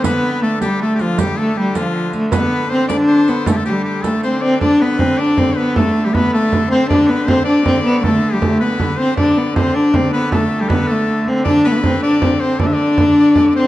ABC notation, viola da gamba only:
X:1
M:6/8
L:1/16
Q:3/8=105
K:Ddor
V:1 name="Viola da gamba"
B,4 A,2 G,2 A,2 F,2 | G,2 A,2 G,2 F,4 A,2 | B,4 C2 D4 B,2 | A,2 G,4 A,2 C2 C2 |
D2 B,2 C2 D2 C2 B,2 | A,3 G, B,2 A,4 C2 | D2 B,2 C2 D2 C2 B,2 | A,3 G, A,2 B,4 C2 |
D2 B,2 C2 D2 C2 B,2 | A,3 G, B,2 A,4 C2 | D2 B,/2 A,/2 B, C2 D2 C2 C2 | D8- D2 C2 |]